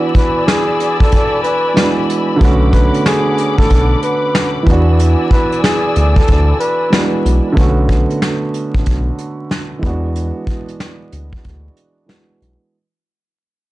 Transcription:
Already playing: E3 B3 D4 F#4 D5 G#5 B5 E6
0.15 B4, kick, closed hi-hat
0.47 G#4, snare, closed hi-hat
0.80 closed hi-hat
0.99 A4, kick
1.12 kick, closed hi-hat
1.43 B4, closed hi-hat
1.74 E3 G#3 B3 D4, snare, closed hi-hat
1.78 F#4
2.10 closed hi-hat
2.36 D3 A3
2.41 B1 B3 C#4 F#5 D6, kick, closed hi-hat
2.45 F#4
2.73 B4, kick, closed hi-hat
2.94 closed hi-hat
3.06 G#4, snare, closed hi-hat
3.38 closed hi-hat
3.58 A1 A4, kick
3.70 B1, kick, closed hi-hat
4.03 B4, closed hi-hat
4.35 snare, closed hi-hat
4.63 E3, kick
4.67 E2 B3 D4 D5 G#5 E6, closed hi-hat
4.72 F#4
4.99 closed hi-hat
5.31 B4, kick, closed hi-hat
5.52 closed hi-hat
5.63 G#4, snare, closed hi-hat
5.96 D2, closed hi-hat
6.16 A4, kick
6.28 D2, kick, closed hi-hat
6.60 B4, closed hi-hat
6.90 E3 G#3 B3 D4, snare, closed hi-hat
6.94 F#4
7.26 B1, closed hi-hat
7.52 D3 A3
7.57 B1 B3 C#4, kick, closed hi-hat
7.61 F#4
7.89 kick, closed hi-hat
8.10 closed hi-hat
8.22 snare, closed hi-hat
8.54 closed hi-hat
8.75 A1, kick
8.86 B1, kick, closed hi-hat
9.19 closed hi-hat
9.51 snare, closed hi-hat
9.79 E3 G#3, kick
9.83 E2 B3 D4, closed hi-hat
9.88 F#4
10.16 closed hi-hat
10.47 kick, closed hi-hat
10.68 closed hi-hat
10.80 snare, closed hi-hat
11.12 D2, closed hi-hat
11.33 kick
11.44 D2, kick, closed hi-hat
11.77 closed hi-hat
12.06 E3 G#3 B3 D4, snare, closed hi-hat
12.10 F#4
12.42 B1, closed hi-hat

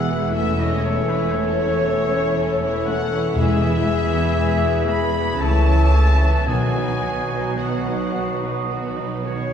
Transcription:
Already playing: E1 E2 E3 G#4 F#5 E6
0.07 E3 G#3 E4 B4
0.32 A3 C#4 E4 A4 E5
0.59 E3 C#4 E4 C#5 D#5
0.83 A3 C#4 A4 C#5
1.09 E3 C#4 E4 B4 C#5
1.32 A3 C#5
1.38 C#4 A4
1.60 E3 C#4 E4 C#5
1.84 A3 C#4 A4
2.09 E3 C#4 E4
2.13 C#5
2.34 A3 C#4 A4
2.60 E3 C#4
2.64 E4 C#5
2.84 A3 F#5
2.88 C#4 A4 F#5
3.10 E3 C#4 E4
3.15 C#5
3.35 E1 E2 E3 G#3 E4 G#4 B4 E5 E6
3.61 E3 B3 E4 G#4
3.85 G#3 G#4 B4
4.10 E3 B3 E4 G#4
4.35 G#3 G#4 B4
4.59 E3 B3 E4 G#4
4.86 G#3 G#4 B4 B5
5.11 E3 B3 E4 G#4
5.38 C#2 C#3 E3 A3 C#4 E4 A4 C#5 A5 E6
5.63 E3 C#4 E4 E5
5.91 A3 C#4 C#5
6.16 E4 E5
6.21 E3 C#4
6.46 B1 B2 D#3 F#3 B3 F#4 B4 G#5 D#6
6.72 F#3 D#4 B4
7.01 D#3 B3 F#4
7.29 F#3 D#4 B4
7.55 D#3 F#3 B3 F#4 B4 F#5 D#6
7.83 F#3 D#4 B4
8.10 D#3 B3 F#4
8.39 F#3 D#4 B4
8.68 D#3 B3 F#4
8.95 F#3 D#4 B4
9.24 D#3 B3 F#4 C#5

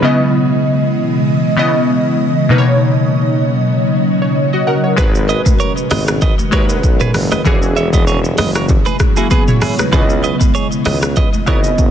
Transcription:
Already playing: B2 C#3 G#3 D#4 B4
0.02 C#3 E3 B3 E4 D#5
1.56 C#3 B3 E4 D#5
2.49 B2 F#3 A#3 C#4 D#4 B4
2.58 C#5
4.22 C#5
4.53 F#4 D#5
4.67 A#4 F#5
4.84 C#5
4.96 G#1 D#3 G#3 F#4 G#4 A#4 B4, kick, low conga, shaker
5.15 shaker
5.29 B4 D#5, shaker
5.46 kick, high conga, shaker
5.60 A#4 C#5, shaker
5.77 shaker
5.91 G#1 B4 D#5, cross-stick, open hi-hat, high conga, low conga, shaker
6.08 cross-stick, shaker
6.22 B4 D#5, kick, low conga, shaker
6.39 high conga, shaker
6.51 D#2 G#3 F#4 A#4 B4 C#5, kick, cross-stick, shaker
6.69 shaker
6.83 B1, kick, shaker
7.00 G#4 B4, mid tom, shaker
7.14 F#1, cross-stick, open hi-hat, low conga, shaker
7.32 B4 D#5, cross-stick, high conga, shaker
7.44 E1 B2 C#3 E3 F#3 C#4 E4 F#4 G#4 C#5, kick, low conga, shaker
7.62 shaker
7.77 C#5 E5, shaker
7.93 B4 D#5, kick, high conga, shaker
8.07 G#4 C#5, shaker
8.24 shaker
8.38 F#1 B4 D#5, cross-stick, open hi-hat, high conga, low conga, shaker
8.55 A#4 C#5, cross-stick, shaker
8.69 kick, low conga, shaker
8.86 G#4 B4, high conga, shaker
8.99 kick, cross-stick, shaker
9.17 A#3 E4 F#4 G#4, shaker
9.31 B3 G#4 B4, kick, shaker
9.48 E4 C#5, mid tom, shaker
9.62 E4 G#4, cross-stick, open hi-hat, low conga, shaker
9.79 D#4 B4, cross-stick, high conga, shaker
9.92 C#2 C#3 E3 B3 E4 G#4 B4 D#5, kick, low conga, shaker
10.10 shaker
10.24 B4 D#5, shaker
10.41 kick, high conga, shaker
10.55 G#4 C#5, shaker
10.72 shaker
10.85 C#2 B4 D#5, cross-stick, open hi-hat, high conga, low conga, shaker
11.03 cross-stick, shaker
11.16 B4 D#5, kick, low conga, shaker
11.34 high conga, shaker
11.46 G#1 C#3 B3 E4 A#4 C#5 D#5, kick, cross-stick, shaker
11.64 shaker
11.78 F#1, kick, shaker

